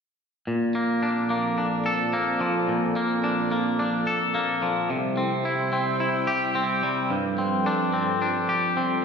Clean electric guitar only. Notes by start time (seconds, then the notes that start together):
0.47 A#2
0.75 A#3
1.03 D4
1.30 A#3
1.58 D4
1.86 A4
2.13 A#3
2.41 F3
2.68 A#2
2.96 A#3
3.24 D4
3.52 A#3
3.79 D4
4.07 A4
4.35 A#3
4.62 F3
4.90 C3
5.17 C4
5.45 E4
5.73 C4
6.00 E4
6.27 G4
6.55 C4
6.83 G3
7.10 G2
7.38 C4
7.66 D4
7.93 C4
8.22 D4
8.49 G4
8.77 C4